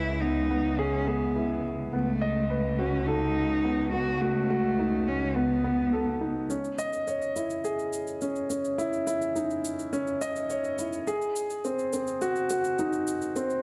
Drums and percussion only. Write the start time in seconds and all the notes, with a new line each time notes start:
6.50 shaker
6.64 shaker
6.79 shaker
6.93 shaker
7.07 shaker
7.22 shaker
7.36 shaker
7.50 shaker
7.65 shaker
7.79 shaker
7.93 shaker
8.07 shaker
8.21 shaker
8.36 shaker
8.50 shaker
8.65 shaker
8.79 shaker
8.93 shaker
9.07 shaker
9.22 shaker
9.36 shaker
9.50 shaker
9.65 shaker
9.79 shaker
9.93 shaker
10.07 shaker
10.21 shaker
10.36 shaker
10.50 shaker
10.64 shaker
10.78 shaker
10.93 shaker
11.07 shaker
11.22 shaker
11.36 shaker
11.50 shaker
11.65 shaker
11.79 shaker
11.93 shaker
12.07 shaker
12.22 shaker
12.36 shaker
12.50 shaker
12.64 shaker
12.79 shaker
12.93 shaker
13.07 shaker
13.22 shaker
13.36 shaker
13.50 shaker